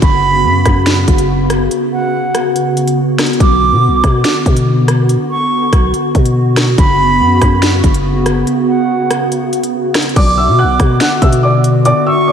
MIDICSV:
0, 0, Header, 1, 6, 480
1, 0, Start_track
1, 0, Key_signature, 2, "minor"
1, 0, Tempo, 422535
1, 25, Time_signature, 4, 2, 24, 8
1, 13998, End_track
2, 0, Start_track
2, 0, Title_t, "Flute"
2, 0, Program_c, 0, 73
2, 22, Note_on_c, 0, 83, 123
2, 938, Note_off_c, 0, 83, 0
2, 2185, Note_on_c, 0, 78, 83
2, 2861, Note_off_c, 0, 78, 0
2, 3864, Note_on_c, 0, 86, 105
2, 4779, Note_off_c, 0, 86, 0
2, 6027, Note_on_c, 0, 85, 97
2, 6703, Note_off_c, 0, 85, 0
2, 7702, Note_on_c, 0, 83, 119
2, 8618, Note_off_c, 0, 83, 0
2, 9864, Note_on_c, 0, 78, 82
2, 10541, Note_off_c, 0, 78, 0
2, 11546, Note_on_c, 0, 86, 109
2, 12460, Note_off_c, 0, 86, 0
2, 13705, Note_on_c, 0, 85, 93
2, 13998, Note_off_c, 0, 85, 0
2, 13998, End_track
3, 0, Start_track
3, 0, Title_t, "Upright piano"
3, 0, Program_c, 1, 0
3, 11548, Note_on_c, 1, 86, 103
3, 11555, Note_on_c, 1, 74, 65
3, 11740, Note_off_c, 1, 86, 0
3, 11744, Note_off_c, 1, 74, 0
3, 11787, Note_on_c, 1, 88, 76
3, 11795, Note_on_c, 1, 76, 60
3, 11980, Note_off_c, 1, 88, 0
3, 11984, Note_off_c, 1, 76, 0
3, 12026, Note_on_c, 1, 90, 89
3, 12038, Note_on_c, 1, 78, 66
3, 12477, Note_off_c, 1, 90, 0
3, 12483, Note_off_c, 1, 78, 0
3, 12507, Note_on_c, 1, 90, 82
3, 12516, Note_on_c, 1, 78, 67
3, 12699, Note_off_c, 1, 90, 0
3, 12704, Note_off_c, 1, 78, 0
3, 12747, Note_on_c, 1, 88, 88
3, 12756, Note_on_c, 1, 76, 63
3, 12939, Note_off_c, 1, 88, 0
3, 12945, Note_off_c, 1, 76, 0
3, 12986, Note_on_c, 1, 86, 90
3, 12996, Note_on_c, 1, 74, 67
3, 13437, Note_off_c, 1, 86, 0
3, 13442, Note_off_c, 1, 74, 0
3, 13468, Note_on_c, 1, 86, 118
3, 13477, Note_on_c, 1, 74, 90
3, 13660, Note_off_c, 1, 86, 0
3, 13665, Note_off_c, 1, 74, 0
3, 13706, Note_on_c, 1, 88, 91
3, 13716, Note_on_c, 1, 76, 62
3, 13899, Note_off_c, 1, 88, 0
3, 13905, Note_off_c, 1, 76, 0
3, 13948, Note_on_c, 1, 86, 89
3, 13956, Note_on_c, 1, 74, 71
3, 13998, Note_off_c, 1, 74, 0
3, 13998, Note_off_c, 1, 86, 0
3, 13998, End_track
4, 0, Start_track
4, 0, Title_t, "Analog synth pad"
4, 0, Program_c, 2, 89
4, 0, Note_on_c, 2, 59, 78
4, 0, Note_on_c, 2, 66, 96
4, 25, Note_on_c, 2, 49, 86
4, 3819, Note_off_c, 2, 66, 0
4, 3826, Note_off_c, 2, 49, 0
4, 3866, Note_on_c, 2, 50, 86
4, 3867, Note_on_c, 2, 66, 96
4, 7659, Note_off_c, 2, 59, 0
4, 7667, Note_off_c, 2, 50, 0
4, 7705, Note_on_c, 2, 49, 83
4, 7706, Note_on_c, 2, 59, 76
4, 11500, Note_off_c, 2, 66, 0
4, 11506, Note_off_c, 2, 49, 0
4, 11507, Note_off_c, 2, 59, 0
4, 11545, Note_on_c, 2, 66, 96
4, 11546, Note_on_c, 2, 50, 88
4, 11546, Note_on_c, 2, 59, 80
4, 13998, Note_off_c, 2, 50, 0
4, 13998, Note_off_c, 2, 59, 0
4, 13998, Note_off_c, 2, 66, 0
4, 13998, End_track
5, 0, Start_track
5, 0, Title_t, "808-style bass"
5, 0, Program_c, 3, 38
5, 24, Note_on_c, 3, 30, 104
5, 504, Note_on_c, 3, 42, 102
5, 521, Note_off_c, 3, 30, 0
5, 732, Note_off_c, 3, 42, 0
5, 745, Note_on_c, 3, 42, 107
5, 1206, Note_off_c, 3, 42, 0
5, 1224, Note_on_c, 3, 30, 106
5, 1916, Note_off_c, 3, 30, 0
5, 3866, Note_on_c, 3, 35, 106
5, 4226, Note_on_c, 3, 47, 101
5, 4243, Note_off_c, 3, 35, 0
5, 4407, Note_on_c, 3, 35, 99
5, 4424, Note_off_c, 3, 47, 0
5, 4577, Note_off_c, 3, 35, 0
5, 4586, Note_on_c, 3, 47, 101
5, 4816, Note_off_c, 3, 47, 0
5, 5066, Note_on_c, 3, 47, 102
5, 5872, Note_off_c, 3, 47, 0
5, 6505, Note_on_c, 3, 35, 101
5, 6735, Note_off_c, 3, 35, 0
5, 6984, Note_on_c, 3, 47, 100
5, 7676, Note_off_c, 3, 47, 0
5, 7705, Note_on_c, 3, 30, 102
5, 8184, Note_on_c, 3, 42, 99
5, 8201, Note_off_c, 3, 30, 0
5, 8412, Note_off_c, 3, 42, 0
5, 8424, Note_on_c, 3, 42, 101
5, 8885, Note_off_c, 3, 42, 0
5, 8904, Note_on_c, 3, 30, 104
5, 9596, Note_off_c, 3, 30, 0
5, 11545, Note_on_c, 3, 35, 107
5, 11905, Note_on_c, 3, 47, 104
5, 11922, Note_off_c, 3, 35, 0
5, 12084, Note_on_c, 3, 35, 102
5, 12101, Note_off_c, 3, 47, 0
5, 12255, Note_off_c, 3, 35, 0
5, 12265, Note_on_c, 3, 47, 102
5, 12495, Note_off_c, 3, 47, 0
5, 12745, Note_on_c, 3, 47, 102
5, 13551, Note_off_c, 3, 47, 0
5, 13998, End_track
6, 0, Start_track
6, 0, Title_t, "Drums"
6, 24, Note_on_c, 9, 36, 116
6, 24, Note_on_c, 9, 42, 75
6, 138, Note_off_c, 9, 36, 0
6, 138, Note_off_c, 9, 42, 0
6, 744, Note_on_c, 9, 36, 100
6, 744, Note_on_c, 9, 37, 98
6, 744, Note_on_c, 9, 42, 87
6, 857, Note_off_c, 9, 37, 0
6, 858, Note_off_c, 9, 36, 0
6, 858, Note_off_c, 9, 42, 0
6, 976, Note_on_c, 9, 26, 95
6, 984, Note_on_c, 9, 38, 120
6, 984, Note_on_c, 9, 42, 71
6, 1090, Note_off_c, 9, 26, 0
6, 1098, Note_off_c, 9, 38, 0
6, 1098, Note_off_c, 9, 42, 0
6, 1224, Note_on_c, 9, 42, 73
6, 1225, Note_on_c, 9, 36, 92
6, 1338, Note_off_c, 9, 36, 0
6, 1338, Note_off_c, 9, 42, 0
6, 1345, Note_on_c, 9, 42, 78
6, 1458, Note_off_c, 9, 42, 0
6, 1704, Note_on_c, 9, 37, 97
6, 1704, Note_on_c, 9, 42, 81
6, 1817, Note_off_c, 9, 37, 0
6, 1817, Note_off_c, 9, 42, 0
6, 1944, Note_on_c, 9, 42, 77
6, 2058, Note_off_c, 9, 42, 0
6, 2665, Note_on_c, 9, 37, 93
6, 2665, Note_on_c, 9, 42, 90
6, 2779, Note_off_c, 9, 37, 0
6, 2779, Note_off_c, 9, 42, 0
6, 2905, Note_on_c, 9, 42, 71
6, 3019, Note_off_c, 9, 42, 0
6, 3146, Note_on_c, 9, 42, 74
6, 3260, Note_off_c, 9, 42, 0
6, 3266, Note_on_c, 9, 42, 83
6, 3379, Note_off_c, 9, 42, 0
6, 3618, Note_on_c, 9, 26, 91
6, 3626, Note_on_c, 9, 37, 95
6, 3626, Note_on_c, 9, 38, 115
6, 3626, Note_on_c, 9, 42, 84
6, 3706, Note_off_c, 9, 42, 0
6, 3706, Note_on_c, 9, 42, 65
6, 3731, Note_off_c, 9, 26, 0
6, 3739, Note_off_c, 9, 37, 0
6, 3739, Note_off_c, 9, 38, 0
6, 3786, Note_off_c, 9, 42, 0
6, 3786, Note_on_c, 9, 42, 50
6, 3866, Note_off_c, 9, 42, 0
6, 3866, Note_on_c, 9, 36, 117
6, 3866, Note_on_c, 9, 42, 78
6, 3979, Note_off_c, 9, 36, 0
6, 3980, Note_off_c, 9, 42, 0
6, 4585, Note_on_c, 9, 37, 99
6, 4586, Note_on_c, 9, 36, 103
6, 4586, Note_on_c, 9, 42, 86
6, 4699, Note_off_c, 9, 36, 0
6, 4699, Note_off_c, 9, 37, 0
6, 4699, Note_off_c, 9, 42, 0
6, 4818, Note_on_c, 9, 26, 96
6, 4826, Note_on_c, 9, 38, 117
6, 4826, Note_on_c, 9, 42, 72
6, 4931, Note_off_c, 9, 26, 0
6, 4939, Note_off_c, 9, 38, 0
6, 4939, Note_off_c, 9, 42, 0
6, 5066, Note_on_c, 9, 36, 89
6, 5066, Note_on_c, 9, 42, 71
6, 5179, Note_off_c, 9, 36, 0
6, 5180, Note_off_c, 9, 42, 0
6, 5186, Note_on_c, 9, 42, 80
6, 5300, Note_off_c, 9, 42, 0
6, 5545, Note_on_c, 9, 37, 98
6, 5546, Note_on_c, 9, 42, 82
6, 5659, Note_off_c, 9, 37, 0
6, 5659, Note_off_c, 9, 42, 0
6, 5786, Note_on_c, 9, 42, 75
6, 5899, Note_off_c, 9, 42, 0
6, 6505, Note_on_c, 9, 36, 103
6, 6506, Note_on_c, 9, 37, 99
6, 6506, Note_on_c, 9, 42, 89
6, 6619, Note_off_c, 9, 36, 0
6, 6619, Note_off_c, 9, 37, 0
6, 6619, Note_off_c, 9, 42, 0
6, 6746, Note_on_c, 9, 42, 71
6, 6860, Note_off_c, 9, 42, 0
6, 6985, Note_on_c, 9, 36, 94
6, 6985, Note_on_c, 9, 42, 71
6, 7098, Note_off_c, 9, 42, 0
6, 7099, Note_off_c, 9, 36, 0
6, 7105, Note_on_c, 9, 42, 82
6, 7219, Note_off_c, 9, 42, 0
6, 7456, Note_on_c, 9, 26, 95
6, 7464, Note_on_c, 9, 37, 94
6, 7464, Note_on_c, 9, 38, 114
6, 7465, Note_on_c, 9, 42, 83
6, 7570, Note_off_c, 9, 26, 0
6, 7578, Note_off_c, 9, 37, 0
6, 7578, Note_off_c, 9, 38, 0
6, 7578, Note_off_c, 9, 42, 0
6, 7704, Note_on_c, 9, 36, 119
6, 7704, Note_on_c, 9, 42, 78
6, 7818, Note_off_c, 9, 36, 0
6, 7818, Note_off_c, 9, 42, 0
6, 8424, Note_on_c, 9, 36, 105
6, 8424, Note_on_c, 9, 37, 97
6, 8424, Note_on_c, 9, 42, 86
6, 8537, Note_off_c, 9, 37, 0
6, 8538, Note_off_c, 9, 36, 0
6, 8538, Note_off_c, 9, 42, 0
6, 8656, Note_on_c, 9, 26, 95
6, 8664, Note_on_c, 9, 38, 121
6, 8664, Note_on_c, 9, 42, 72
6, 8769, Note_off_c, 9, 26, 0
6, 8777, Note_off_c, 9, 38, 0
6, 8777, Note_off_c, 9, 42, 0
6, 8903, Note_on_c, 9, 42, 72
6, 8904, Note_on_c, 9, 36, 90
6, 9017, Note_off_c, 9, 36, 0
6, 9017, Note_off_c, 9, 42, 0
6, 9024, Note_on_c, 9, 42, 81
6, 9138, Note_off_c, 9, 42, 0
6, 9382, Note_on_c, 9, 37, 95
6, 9383, Note_on_c, 9, 42, 80
6, 9496, Note_off_c, 9, 37, 0
6, 9496, Note_off_c, 9, 42, 0
6, 9623, Note_on_c, 9, 42, 77
6, 9736, Note_off_c, 9, 42, 0
6, 10344, Note_on_c, 9, 37, 96
6, 10344, Note_on_c, 9, 42, 85
6, 10457, Note_off_c, 9, 37, 0
6, 10458, Note_off_c, 9, 42, 0
6, 10585, Note_on_c, 9, 42, 74
6, 10698, Note_off_c, 9, 42, 0
6, 10824, Note_on_c, 9, 42, 73
6, 10938, Note_off_c, 9, 42, 0
6, 10945, Note_on_c, 9, 42, 81
6, 11058, Note_off_c, 9, 42, 0
6, 11296, Note_on_c, 9, 26, 93
6, 11304, Note_on_c, 9, 37, 97
6, 11304, Note_on_c, 9, 38, 116
6, 11304, Note_on_c, 9, 42, 81
6, 11384, Note_off_c, 9, 42, 0
6, 11384, Note_on_c, 9, 42, 67
6, 11410, Note_off_c, 9, 26, 0
6, 11418, Note_off_c, 9, 37, 0
6, 11418, Note_off_c, 9, 38, 0
6, 11465, Note_off_c, 9, 42, 0
6, 11465, Note_on_c, 9, 42, 49
6, 11545, Note_off_c, 9, 42, 0
6, 11545, Note_on_c, 9, 36, 120
6, 11545, Note_on_c, 9, 42, 78
6, 11545, Note_on_c, 9, 49, 105
6, 11658, Note_off_c, 9, 36, 0
6, 11658, Note_off_c, 9, 42, 0
6, 11658, Note_off_c, 9, 49, 0
6, 12264, Note_on_c, 9, 37, 97
6, 12265, Note_on_c, 9, 36, 103
6, 12265, Note_on_c, 9, 42, 90
6, 12378, Note_off_c, 9, 36, 0
6, 12378, Note_off_c, 9, 37, 0
6, 12378, Note_off_c, 9, 42, 0
6, 12497, Note_on_c, 9, 26, 99
6, 12505, Note_on_c, 9, 38, 124
6, 12505, Note_on_c, 9, 42, 77
6, 12611, Note_off_c, 9, 26, 0
6, 12619, Note_off_c, 9, 38, 0
6, 12619, Note_off_c, 9, 42, 0
6, 12745, Note_on_c, 9, 36, 92
6, 12745, Note_on_c, 9, 42, 73
6, 12859, Note_off_c, 9, 36, 0
6, 12859, Note_off_c, 9, 42, 0
6, 12866, Note_on_c, 9, 42, 83
6, 12979, Note_off_c, 9, 42, 0
6, 13225, Note_on_c, 9, 42, 84
6, 13338, Note_off_c, 9, 42, 0
6, 13464, Note_on_c, 9, 42, 78
6, 13578, Note_off_c, 9, 42, 0
6, 13998, End_track
0, 0, End_of_file